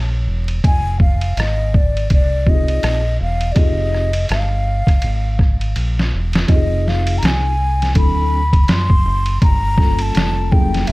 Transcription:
Already playing: fingered electric bass A#1
0.27 fingered electric bass E1
0.48 ride
0.64 fingered electric bass F1, flute G#5, kick, ride
1.00 flute F5, kick
1.21 ride
1.37 fingered electric bass G#1, flute D#5, cross-stick, hi-hat pedal, ride
1.74 flute D5, kick
1.97 ride
2.10 fingered electric bass C2, flute D5, kick, ride
2.46 tine electric piano C4 D#4 F4 G4, flute D#5, kick
2.54 tine electric piano G#4
2.68 ride
2.83 fingered electric bass A#1, cross-stick, hi-hat pedal, ride
3.20 fingered electric bass E1, flute F5
3.41 ride
3.52 tine electric piano C4 D#4 F4 G4, flute D5, ride
3.56 fingered electric bass F1, tine electric piano G#4, flute D#5, kick
3.94 cross-stick
4.13 ride
4.29 fingered electric bass G1, flute F5, cross-stick, hi-hat pedal, ride
4.87 kick, cross-stick, ride
5.02 fingered electric bass G#1, ride
5.39 kick, cross-stick
5.61 ride
5.76 fingered electric bass A#1, hi-hat pedal, ride
5.99 snare
6.13 fingered electric bass E1
6.33 snare, ride
6.48 fingered electric bass F1, tine electric piano C4 D#4 F4 G4, flute D#5, kick, ride
6.56 tine electric piano G#4
6.88 flute F5, snare
7.07 ride
7.18 flute A#5
7.22 fingered electric bass C2, flute G#5, snare, hi-hat pedal, ride
7.82 snare, ride
7.95 fingered electric bass D2, tine electric piano F#3 C4 D4 E4 A4, flute B5, kick, ride
8.53 kick, ride
8.64 flute B5
8.68 fingered electric bass F#2, flute C6, snare, hi-hat pedal, ride
8.90 kick
9.05 fingered electric bass F#1
9.26 ride
9.42 fingered electric bass G1, flute A#5, kick, ride
9.78 tine electric piano G3 A#3 C#4 F4 A4, kick, snare
9.99 flute A5, ride
10.15 fingered electric bass F1, snare, hi-hat pedal, ride
10.51 tine electric piano F#3 A3 C#4 E4 G#4, flute G5, kick
10.59 tine electric piano A#3
10.74 snare, ride
10.87 fingered electric bass F#1, flute E5, ride

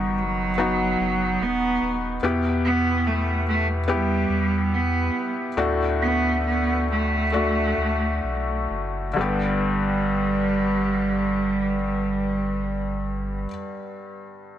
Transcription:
Already playing: sub bass F#1, felt piano D#3 B3 D#4 F#4, cello G3
0.19 cello F#3
0.58 felt piano B3 D#4 F#4
1.00 sub bass F#1
1.40 sub bass D#1, cello B3
1.82 sub bass D#1
2.22 sub bass E2, felt piano B2 B3 E4 G4
2.65 cello B3
3.06 cello A3
3.48 cello A3
3.88 cello G3, felt piano B3 E4 G4
4.29 sub bass E2
4.73 cello B3
5.57 sub bass D2, felt piano A2 A3 D4 F#4
6.03 cello B3
6.47 cello B3
6.91 cello A3
7.32 felt piano A3 D4 F#4
7.77 sub bass D2
8.23 sub bass B1
8.70 sub bass F#1
9.13 sub bass G1, felt piano G2 D3 G3
9.18 cello G3, felt piano B3 G4

